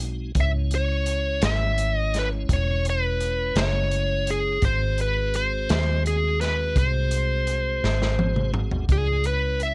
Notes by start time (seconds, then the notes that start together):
Already playing: B1 G#3 C4 D#4 F#4
0.00 closed hi-hat
0.35 C#2 G#3 C#4 E4 C#5, kick, closed hi-hat
0.41 E5
0.71 closed hi-hat
0.75 C#5
1.06 closed hi-hat
1.42 G#1 E5, snare, closed hi-hat
1.78 closed hi-hat
1.95 D#5
2.14 snare, closed hi-hat
2.19 B4
2.49 E1, kick, closed hi-hat
2.53 C#5
2.85 closed hi-hat
2.90 B4
3.20 closed hi-hat
3.56 F#1 C#5, snare, closed hi-hat
3.91 closed hi-hat
4.27 G#4, closed hi-hat
4.62 G#1 G#3 C4 F#4 G#4 C5, kick, closed hi-hat
4.98 B4, closed hi-hat
5.34 C5, closed hi-hat
5.69 D#2, snare, closed hi-hat
6.06 G#4, closed hi-hat
6.41 B4, snare, closed hi-hat
6.76 C2 C5, kick, closed hi-hat
7.11 closed hi-hat
7.47 closed hi-hat
7.84 G#1, snare
8.02 snare
8.19 high tom
8.36 mid tom
8.54 mid tom
8.71 floor tom
8.89 C#2 A3 D4 F4 G#4 D5, kick, closed hi-hat
9.24 G#3 C#4 E4 B4 C#5, closed hi-hat
9.60 E5, closed hi-hat